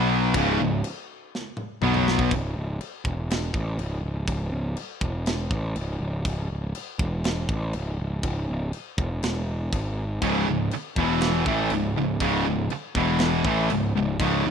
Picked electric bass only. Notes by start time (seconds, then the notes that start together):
Already playing: B1
0.34 C#1
0.59 C#1
1.82 B1
2.31 C#1
2.56 C#1
2.81 muted picked electric bass stroke
3.05 E1
3.54 A1
3.79 C#1
4.03 C#1
4.28 C#1
4.52 C#1
4.78 muted picked electric bass stroke
5.01 E1
5.51 A1
5.77 C#1
6.00 C#1
6.25 C#1
6.50 C#1
6.75 muted picked electric bass stroke
6.99 E1
7.49 A1
7.75 C#1
7.99 C#1
8.23 C#1
8.49 C#1
8.74 muted picked electric bass stroke
8.98 E1
9.23 E1
9.73 G#1
10.22 C#1
10.48 C#1
10.73 muted picked electric bass stroke
10.96 E1
11.46 A1
11.72 C#1
11.97 C#1
12.20 C#1
12.46 C#1
12.72 muted picked electric bass stroke
12.95 E1
13.45 A1
13.70 C#1
13.95 C#1
14.20 C#1
14.44 C#1